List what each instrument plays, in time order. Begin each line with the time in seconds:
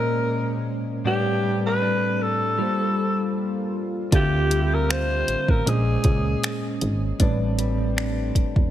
Already playing: tine electric piano A#2 G#3 C#4 C5 D#5, clean electric guitar A#2, analog synth pad G#3 A#3 C#4, alto saxophone A#4
1.04 tine electric piano A2 G3 C4 B4, clean electric guitar A2 D4, analog synth pad G3 A3 C4, alto saxophone G4
1.08 tine electric piano D5
1.43 clean electric guitar G3
1.66 alto saxophone B4
1.82 clean electric guitar D4
2.22 alto saxophone A4
2.58 tine electric piano G3 A#3 F4 A4, clean electric guitar G3, analog synth pad G3 A#3 F4
2.62 tine electric piano C5
4.11 fm bass D2, tine electric piano D3 C4 F4 G4, clean electric guitar D3 F4, analog synth pad A3, alto saxophone G4, kick, closed hi-hat
4.16 tine electric piano E5
4.50 clean electric guitar G3, closed hi-hat
4.74 alto saxophone A#4
4.89 clean electric guitar F4, alto saxophone C5, finger snap
5.28 fm bass A1, closed hi-hat
5.48 fm bass A1, alto saxophone A#4, kick
5.65 fm bass A#1, tine electric piano A#2 G#3 C#4 C5, clean electric guitar A#2, analog synth pad G#3 A#3 C#4, alto saxophone G#4, closed hi-hat
5.70 tine electric piano D#5
6.04 fm bass C#2, kick, closed hi-hat
6.43 finger snap, closed hi-hat
6.81 fm bass G#1, closed hi-hat
7.19 fm bass A1, tine electric piano A2 G3 C4 B4, clean electric guitar A2 D4, analog synth pad G3 A3, kick, closed hi-hat
7.23 tine electric piano D5
7.58 clean electric guitar G3, closed hi-hat
7.97 clean electric guitar D4, finger snap
8.35 fm bass E1, kick, closed hi-hat
8.56 fm bass E1, kick